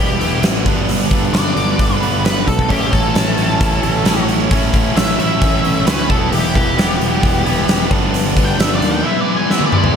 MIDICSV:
0, 0, Header, 1, 5, 480
1, 0, Start_track
1, 0, Tempo, 452830
1, 939, Time_signature, 4, 2, 24, 8
1, 10558, End_track
2, 0, Start_track
2, 0, Title_t, "Lead electric guitar"
2, 0, Program_c, 0, 29
2, 0, Note_on_c, 0, 67, 105
2, 442, Note_off_c, 0, 67, 0
2, 1420, Note_on_c, 0, 74, 101
2, 2067, Note_off_c, 0, 74, 0
2, 2067, Note_on_c, 0, 71, 101
2, 2352, Note_off_c, 0, 71, 0
2, 2388, Note_on_c, 0, 71, 86
2, 2617, Note_off_c, 0, 71, 0
2, 2623, Note_on_c, 0, 69, 86
2, 2855, Note_off_c, 0, 69, 0
2, 2866, Note_on_c, 0, 67, 85
2, 3097, Note_off_c, 0, 67, 0
2, 3101, Note_on_c, 0, 69, 90
2, 4500, Note_off_c, 0, 69, 0
2, 5259, Note_on_c, 0, 76, 117
2, 6193, Note_off_c, 0, 76, 0
2, 6216, Note_on_c, 0, 71, 96
2, 6452, Note_off_c, 0, 71, 0
2, 6460, Note_on_c, 0, 69, 81
2, 6688, Note_off_c, 0, 69, 0
2, 6692, Note_on_c, 0, 67, 91
2, 6931, Note_off_c, 0, 67, 0
2, 6952, Note_on_c, 0, 67, 96
2, 8345, Note_off_c, 0, 67, 0
2, 8953, Note_on_c, 0, 79, 92
2, 9118, Note_off_c, 0, 79, 0
2, 9118, Note_on_c, 0, 76, 99
2, 9271, Note_off_c, 0, 76, 0
2, 9271, Note_on_c, 0, 74, 80
2, 9421, Note_off_c, 0, 74, 0
2, 9439, Note_on_c, 0, 79, 104
2, 9585, Note_off_c, 0, 79, 0
2, 9596, Note_on_c, 0, 76, 99
2, 9758, Note_off_c, 0, 76, 0
2, 9758, Note_on_c, 0, 74, 92
2, 9903, Note_off_c, 0, 74, 0
2, 9927, Note_on_c, 0, 80, 80
2, 10068, Note_off_c, 0, 80, 0
2, 10080, Note_on_c, 0, 76, 95
2, 10224, Note_off_c, 0, 76, 0
2, 10238, Note_on_c, 0, 74, 107
2, 10537, Note_off_c, 0, 74, 0
2, 10558, End_track
3, 0, Start_track
3, 0, Title_t, "Distorted electric guitar"
3, 0, Program_c, 1, 30
3, 0, Note_on_c, 1, 52, 82
3, 0, Note_on_c, 1, 55, 76
3, 0, Note_on_c, 1, 59, 77
3, 0, Note_on_c, 1, 64, 88
3, 194, Note_off_c, 1, 64, 0
3, 201, Note_off_c, 1, 52, 0
3, 204, Note_off_c, 1, 55, 0
3, 207, Note_off_c, 1, 59, 0
3, 207, Note_on_c, 1, 64, 86
3, 219, Note_on_c, 1, 59, 78
3, 227, Note_on_c, 1, 55, 75
3, 232, Note_on_c, 1, 52, 65
3, 679, Note_off_c, 1, 64, 0
3, 680, Note_on_c, 1, 43, 90
3, 683, Note_off_c, 1, 55, 0
3, 684, Note_off_c, 1, 52, 0
3, 685, Note_off_c, 1, 59, 0
3, 688, Note_on_c, 1, 50, 86
3, 696, Note_on_c, 1, 55, 84
3, 701, Note_on_c, 1, 59, 92
3, 707, Note_on_c, 1, 62, 86
3, 1396, Note_off_c, 1, 43, 0
3, 1400, Note_off_c, 1, 50, 0
3, 1404, Note_off_c, 1, 55, 0
3, 1406, Note_off_c, 1, 59, 0
3, 1407, Note_on_c, 1, 43, 72
3, 1409, Note_off_c, 1, 62, 0
3, 1417, Note_on_c, 1, 50, 74
3, 1423, Note_on_c, 1, 55, 74
3, 1427, Note_on_c, 1, 59, 90
3, 1436, Note_on_c, 1, 62, 87
3, 2117, Note_off_c, 1, 62, 0
3, 2119, Note_off_c, 1, 43, 0
3, 2122, Note_off_c, 1, 59, 0
3, 2124, Note_off_c, 1, 50, 0
3, 2127, Note_off_c, 1, 55, 0
3, 2130, Note_on_c, 1, 62, 83
3, 2135, Note_on_c, 1, 59, 78
3, 2143, Note_on_c, 1, 55, 72
3, 2148, Note_on_c, 1, 50, 74
3, 2156, Note_on_c, 1, 43, 69
3, 2601, Note_off_c, 1, 62, 0
3, 2604, Note_off_c, 1, 59, 0
3, 2608, Note_off_c, 1, 55, 0
3, 2610, Note_off_c, 1, 50, 0
3, 2614, Note_off_c, 1, 43, 0
3, 2851, Note_on_c, 1, 45, 91
3, 2858, Note_on_c, 1, 52, 79
3, 2861, Note_on_c, 1, 57, 91
3, 2866, Note_on_c, 1, 61, 90
3, 2872, Note_on_c, 1, 64, 93
3, 3566, Note_off_c, 1, 64, 0
3, 3570, Note_on_c, 1, 64, 88
3, 3572, Note_off_c, 1, 61, 0
3, 3576, Note_off_c, 1, 57, 0
3, 3576, Note_on_c, 1, 61, 82
3, 3580, Note_off_c, 1, 52, 0
3, 3580, Note_on_c, 1, 57, 79
3, 3584, Note_on_c, 1, 52, 79
3, 3588, Note_off_c, 1, 45, 0
3, 3592, Note_on_c, 1, 45, 71
3, 4272, Note_off_c, 1, 45, 0
3, 4285, Note_off_c, 1, 61, 0
3, 4285, Note_on_c, 1, 45, 73
3, 4287, Note_off_c, 1, 57, 0
3, 4290, Note_off_c, 1, 52, 0
3, 4295, Note_on_c, 1, 52, 70
3, 4298, Note_on_c, 1, 57, 73
3, 4303, Note_off_c, 1, 64, 0
3, 4306, Note_on_c, 1, 61, 75
3, 4307, Note_on_c, 1, 64, 72
3, 4753, Note_off_c, 1, 45, 0
3, 4766, Note_off_c, 1, 57, 0
3, 4766, Note_on_c, 1, 45, 87
3, 4770, Note_off_c, 1, 61, 0
3, 4772, Note_off_c, 1, 52, 0
3, 4776, Note_on_c, 1, 52, 94
3, 4784, Note_on_c, 1, 57, 86
3, 4789, Note_on_c, 1, 61, 97
3, 4791, Note_off_c, 1, 64, 0
3, 4795, Note_on_c, 1, 64, 94
3, 5477, Note_off_c, 1, 61, 0
3, 5480, Note_off_c, 1, 45, 0
3, 5481, Note_off_c, 1, 64, 0
3, 5485, Note_off_c, 1, 57, 0
3, 5485, Note_on_c, 1, 64, 88
3, 5490, Note_on_c, 1, 61, 82
3, 5498, Note_on_c, 1, 57, 81
3, 5499, Note_off_c, 1, 52, 0
3, 5503, Note_on_c, 1, 52, 76
3, 5510, Note_on_c, 1, 45, 65
3, 6200, Note_off_c, 1, 45, 0
3, 6200, Note_off_c, 1, 64, 0
3, 6202, Note_off_c, 1, 61, 0
3, 6204, Note_off_c, 1, 52, 0
3, 6207, Note_off_c, 1, 57, 0
3, 6213, Note_on_c, 1, 45, 75
3, 6216, Note_on_c, 1, 52, 83
3, 6224, Note_on_c, 1, 57, 84
3, 6230, Note_on_c, 1, 61, 79
3, 6237, Note_on_c, 1, 64, 79
3, 6421, Note_off_c, 1, 52, 0
3, 6434, Note_on_c, 1, 52, 85
3, 6442, Note_off_c, 1, 57, 0
3, 6444, Note_off_c, 1, 45, 0
3, 6446, Note_off_c, 1, 64, 0
3, 6447, Note_on_c, 1, 55, 100
3, 6450, Note_off_c, 1, 61, 0
3, 6455, Note_on_c, 1, 59, 97
3, 6459, Note_on_c, 1, 64, 87
3, 7150, Note_off_c, 1, 52, 0
3, 7161, Note_off_c, 1, 55, 0
3, 7163, Note_on_c, 1, 52, 79
3, 7167, Note_off_c, 1, 64, 0
3, 7174, Note_on_c, 1, 55, 79
3, 7178, Note_off_c, 1, 59, 0
3, 7182, Note_on_c, 1, 59, 85
3, 7188, Note_on_c, 1, 64, 78
3, 7879, Note_off_c, 1, 52, 0
3, 7881, Note_off_c, 1, 64, 0
3, 7884, Note_off_c, 1, 55, 0
3, 7888, Note_off_c, 1, 59, 0
3, 7894, Note_on_c, 1, 64, 83
3, 7903, Note_on_c, 1, 59, 81
3, 7912, Note_on_c, 1, 55, 82
3, 7921, Note_on_c, 1, 52, 68
3, 8364, Note_off_c, 1, 64, 0
3, 8368, Note_off_c, 1, 59, 0
3, 8373, Note_off_c, 1, 55, 0
3, 8376, Note_on_c, 1, 43, 86
3, 8377, Note_off_c, 1, 52, 0
3, 8384, Note_on_c, 1, 50, 90
3, 8390, Note_on_c, 1, 55, 99
3, 8397, Note_on_c, 1, 59, 99
3, 8399, Note_on_c, 1, 62, 92
3, 9079, Note_off_c, 1, 43, 0
3, 9087, Note_off_c, 1, 50, 0
3, 9091, Note_off_c, 1, 55, 0
3, 9092, Note_on_c, 1, 43, 76
3, 9094, Note_off_c, 1, 59, 0
3, 9095, Note_off_c, 1, 62, 0
3, 9098, Note_on_c, 1, 50, 86
3, 9108, Note_on_c, 1, 55, 82
3, 9108, Note_on_c, 1, 59, 84
3, 9113, Note_on_c, 1, 62, 89
3, 9561, Note_off_c, 1, 43, 0
3, 9561, Note_off_c, 1, 50, 0
3, 9566, Note_on_c, 1, 52, 102
3, 9567, Note_off_c, 1, 59, 0
3, 9569, Note_off_c, 1, 55, 0
3, 9571, Note_off_c, 1, 62, 0
3, 9575, Note_on_c, 1, 56, 97
3, 9579, Note_on_c, 1, 59, 112
3, 9586, Note_on_c, 1, 64, 104
3, 10275, Note_off_c, 1, 52, 0
3, 10277, Note_off_c, 1, 64, 0
3, 10280, Note_off_c, 1, 56, 0
3, 10282, Note_off_c, 1, 59, 0
3, 10289, Note_on_c, 1, 64, 84
3, 10296, Note_on_c, 1, 59, 77
3, 10307, Note_on_c, 1, 56, 69
3, 10312, Note_on_c, 1, 52, 64
3, 10517, Note_off_c, 1, 64, 0
3, 10521, Note_off_c, 1, 59, 0
3, 10526, Note_off_c, 1, 56, 0
3, 10529, Note_off_c, 1, 52, 0
3, 10558, End_track
4, 0, Start_track
4, 0, Title_t, "Picked electric bass"
4, 0, Program_c, 2, 34
4, 0, Note_on_c, 2, 28, 97
4, 197, Note_off_c, 2, 28, 0
4, 223, Note_on_c, 2, 28, 85
4, 441, Note_off_c, 2, 28, 0
4, 456, Note_on_c, 2, 33, 96
4, 677, Note_off_c, 2, 33, 0
4, 695, Note_on_c, 2, 31, 84
4, 916, Note_off_c, 2, 31, 0
4, 931, Note_on_c, 2, 31, 88
4, 1373, Note_off_c, 2, 31, 0
4, 1413, Note_on_c, 2, 31, 85
4, 1635, Note_off_c, 2, 31, 0
4, 1656, Note_on_c, 2, 31, 85
4, 1877, Note_off_c, 2, 31, 0
4, 1904, Note_on_c, 2, 31, 90
4, 2341, Note_off_c, 2, 31, 0
4, 2378, Note_on_c, 2, 31, 92
4, 2598, Note_off_c, 2, 31, 0
4, 2622, Note_on_c, 2, 35, 87
4, 2862, Note_off_c, 2, 35, 0
4, 2862, Note_on_c, 2, 33, 96
4, 3081, Note_off_c, 2, 33, 0
4, 3106, Note_on_c, 2, 33, 84
4, 3323, Note_off_c, 2, 33, 0
4, 3345, Note_on_c, 2, 33, 84
4, 3563, Note_off_c, 2, 33, 0
4, 3577, Note_on_c, 2, 33, 83
4, 3798, Note_off_c, 2, 33, 0
4, 3823, Note_on_c, 2, 33, 93
4, 4042, Note_off_c, 2, 33, 0
4, 4055, Note_on_c, 2, 33, 85
4, 4278, Note_off_c, 2, 33, 0
4, 4300, Note_on_c, 2, 33, 91
4, 4740, Note_off_c, 2, 33, 0
4, 4783, Note_on_c, 2, 33, 100
4, 5221, Note_off_c, 2, 33, 0
4, 5263, Note_on_c, 2, 33, 96
4, 5482, Note_off_c, 2, 33, 0
4, 5499, Note_on_c, 2, 33, 90
4, 5720, Note_off_c, 2, 33, 0
4, 5742, Note_on_c, 2, 33, 92
4, 6181, Note_off_c, 2, 33, 0
4, 6226, Note_on_c, 2, 38, 100
4, 6444, Note_off_c, 2, 38, 0
4, 6467, Note_on_c, 2, 28, 91
4, 6685, Note_off_c, 2, 28, 0
4, 6702, Note_on_c, 2, 28, 97
4, 6922, Note_off_c, 2, 28, 0
4, 6950, Note_on_c, 2, 28, 88
4, 7166, Note_off_c, 2, 28, 0
4, 7180, Note_on_c, 2, 28, 90
4, 7401, Note_off_c, 2, 28, 0
4, 7427, Note_on_c, 2, 28, 85
4, 7644, Note_off_c, 2, 28, 0
4, 7670, Note_on_c, 2, 28, 97
4, 7886, Note_off_c, 2, 28, 0
4, 7898, Note_on_c, 2, 28, 91
4, 8119, Note_off_c, 2, 28, 0
4, 8147, Note_on_c, 2, 28, 99
4, 8364, Note_off_c, 2, 28, 0
4, 8384, Note_on_c, 2, 31, 89
4, 8602, Note_off_c, 2, 31, 0
4, 8622, Note_on_c, 2, 31, 97
4, 9059, Note_off_c, 2, 31, 0
4, 9101, Note_on_c, 2, 31, 96
4, 9320, Note_off_c, 2, 31, 0
4, 9341, Note_on_c, 2, 39, 84
4, 9559, Note_off_c, 2, 39, 0
4, 10558, End_track
5, 0, Start_track
5, 0, Title_t, "Drums"
5, 221, Note_on_c, 9, 46, 53
5, 327, Note_off_c, 9, 46, 0
5, 455, Note_on_c, 9, 46, 69
5, 465, Note_on_c, 9, 38, 104
5, 561, Note_off_c, 9, 46, 0
5, 571, Note_off_c, 9, 38, 0
5, 699, Note_on_c, 9, 36, 95
5, 701, Note_on_c, 9, 46, 51
5, 805, Note_off_c, 9, 36, 0
5, 807, Note_off_c, 9, 46, 0
5, 940, Note_on_c, 9, 46, 75
5, 1046, Note_off_c, 9, 46, 0
5, 1178, Note_on_c, 9, 36, 88
5, 1180, Note_on_c, 9, 46, 57
5, 1284, Note_off_c, 9, 36, 0
5, 1286, Note_off_c, 9, 46, 0
5, 1418, Note_on_c, 9, 46, 72
5, 1428, Note_on_c, 9, 38, 108
5, 1524, Note_off_c, 9, 46, 0
5, 1534, Note_off_c, 9, 38, 0
5, 1662, Note_on_c, 9, 46, 51
5, 1768, Note_off_c, 9, 46, 0
5, 1901, Note_on_c, 9, 36, 101
5, 1901, Note_on_c, 9, 46, 67
5, 2007, Note_off_c, 9, 36, 0
5, 2007, Note_off_c, 9, 46, 0
5, 2150, Note_on_c, 9, 46, 48
5, 2256, Note_off_c, 9, 46, 0
5, 2386, Note_on_c, 9, 46, 64
5, 2395, Note_on_c, 9, 38, 103
5, 2492, Note_off_c, 9, 46, 0
5, 2501, Note_off_c, 9, 38, 0
5, 2625, Note_on_c, 9, 36, 70
5, 2629, Note_on_c, 9, 46, 50
5, 2731, Note_off_c, 9, 36, 0
5, 2735, Note_off_c, 9, 46, 0
5, 2744, Note_on_c, 9, 36, 69
5, 2850, Note_off_c, 9, 36, 0
5, 2865, Note_on_c, 9, 36, 97
5, 2869, Note_on_c, 9, 46, 70
5, 2971, Note_off_c, 9, 36, 0
5, 2975, Note_off_c, 9, 46, 0
5, 3104, Note_on_c, 9, 46, 55
5, 3105, Note_on_c, 9, 36, 85
5, 3210, Note_off_c, 9, 46, 0
5, 3211, Note_off_c, 9, 36, 0
5, 3342, Note_on_c, 9, 46, 70
5, 3352, Note_on_c, 9, 38, 109
5, 3448, Note_off_c, 9, 46, 0
5, 3458, Note_off_c, 9, 38, 0
5, 3579, Note_on_c, 9, 46, 52
5, 3685, Note_off_c, 9, 46, 0
5, 3823, Note_on_c, 9, 46, 81
5, 3824, Note_on_c, 9, 36, 116
5, 3929, Note_off_c, 9, 46, 0
5, 3930, Note_off_c, 9, 36, 0
5, 4060, Note_on_c, 9, 46, 49
5, 4166, Note_off_c, 9, 46, 0
5, 4296, Note_on_c, 9, 46, 77
5, 4306, Note_on_c, 9, 38, 102
5, 4402, Note_off_c, 9, 46, 0
5, 4412, Note_off_c, 9, 38, 0
5, 4542, Note_on_c, 9, 46, 54
5, 4648, Note_off_c, 9, 46, 0
5, 4779, Note_on_c, 9, 46, 79
5, 4781, Note_on_c, 9, 36, 105
5, 4885, Note_off_c, 9, 46, 0
5, 4887, Note_off_c, 9, 36, 0
5, 5022, Note_on_c, 9, 36, 92
5, 5024, Note_on_c, 9, 46, 58
5, 5128, Note_off_c, 9, 36, 0
5, 5130, Note_off_c, 9, 46, 0
5, 5264, Note_on_c, 9, 46, 76
5, 5273, Note_on_c, 9, 38, 105
5, 5370, Note_off_c, 9, 46, 0
5, 5379, Note_off_c, 9, 38, 0
5, 5506, Note_on_c, 9, 46, 52
5, 5612, Note_off_c, 9, 46, 0
5, 5741, Note_on_c, 9, 46, 71
5, 5742, Note_on_c, 9, 36, 96
5, 5847, Note_off_c, 9, 46, 0
5, 5848, Note_off_c, 9, 36, 0
5, 5982, Note_on_c, 9, 46, 49
5, 6088, Note_off_c, 9, 46, 0
5, 6220, Note_on_c, 9, 46, 67
5, 6230, Note_on_c, 9, 38, 105
5, 6326, Note_off_c, 9, 46, 0
5, 6336, Note_off_c, 9, 38, 0
5, 6464, Note_on_c, 9, 36, 97
5, 6467, Note_on_c, 9, 46, 48
5, 6570, Note_off_c, 9, 36, 0
5, 6573, Note_off_c, 9, 46, 0
5, 6705, Note_on_c, 9, 46, 75
5, 6811, Note_off_c, 9, 46, 0
5, 6947, Note_on_c, 9, 36, 82
5, 6954, Note_on_c, 9, 46, 54
5, 7053, Note_off_c, 9, 36, 0
5, 7060, Note_off_c, 9, 46, 0
5, 7191, Note_on_c, 9, 46, 70
5, 7201, Note_on_c, 9, 38, 107
5, 7297, Note_off_c, 9, 46, 0
5, 7307, Note_off_c, 9, 38, 0
5, 7432, Note_on_c, 9, 46, 51
5, 7538, Note_off_c, 9, 46, 0
5, 7667, Note_on_c, 9, 36, 108
5, 7671, Note_on_c, 9, 46, 72
5, 7773, Note_off_c, 9, 36, 0
5, 7777, Note_off_c, 9, 46, 0
5, 7910, Note_on_c, 9, 46, 49
5, 8016, Note_off_c, 9, 46, 0
5, 8144, Note_on_c, 9, 46, 70
5, 8154, Note_on_c, 9, 38, 114
5, 8250, Note_off_c, 9, 46, 0
5, 8260, Note_off_c, 9, 38, 0
5, 8381, Note_on_c, 9, 46, 54
5, 8384, Note_on_c, 9, 36, 96
5, 8487, Note_off_c, 9, 46, 0
5, 8490, Note_off_c, 9, 36, 0
5, 8629, Note_on_c, 9, 46, 82
5, 8735, Note_off_c, 9, 46, 0
5, 8868, Note_on_c, 9, 36, 87
5, 8874, Note_on_c, 9, 46, 65
5, 8974, Note_off_c, 9, 36, 0
5, 8980, Note_off_c, 9, 46, 0
5, 9112, Note_on_c, 9, 46, 79
5, 9121, Note_on_c, 9, 38, 122
5, 9218, Note_off_c, 9, 46, 0
5, 9227, Note_off_c, 9, 38, 0
5, 9349, Note_on_c, 9, 46, 57
5, 9455, Note_off_c, 9, 46, 0
5, 10074, Note_on_c, 9, 38, 58
5, 10180, Note_off_c, 9, 38, 0
5, 10181, Note_on_c, 9, 48, 57
5, 10287, Note_off_c, 9, 48, 0
5, 10306, Note_on_c, 9, 45, 82
5, 10412, Note_off_c, 9, 45, 0
5, 10427, Note_on_c, 9, 43, 82
5, 10533, Note_off_c, 9, 43, 0
5, 10558, End_track
0, 0, End_of_file